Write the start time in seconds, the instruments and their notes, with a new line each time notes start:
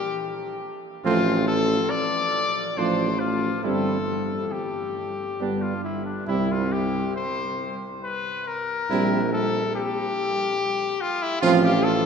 Already playing: trumpet G4
1.05 bass trombone A1, euphonium F3, french horn A3, trumpet C4 F4
1.48 trumpet A4
1.90 trumpet D5
2.77 bass trombone A1, euphonium F3, french horn A3, trumpet D4 C5
3.20 trumpet F4
3.63 bass trombone G1, euphonium G3, french horn C4, trumpet E4 A4
4.52 trumpet G4
5.40 bass trombone G1, euphonium G3, french horn B3, trumpet D4
5.62 trumpet F4
5.84 trumpet E4
6.06 trumpet D4
6.27 bass trombone C2, euphonium G3, french horn C4, trumpet E4
6.51 trumpet F4
6.72 trumpet G4
7.16 trumpet C5
8.04 trumpet B4
8.47 trumpet A#4
8.90 bass trombone A#1, euphonium G3, french horn C4, trumpet E4
9.33 trumpet A4
9.76 trumpet G4
11.01 trumpet F4
11.22 trumpet E4
11.41 bass trombone A1, euphonium F3, french horn C4, trumpet F4
11.64 trumpet G4
11.83 trumpet A4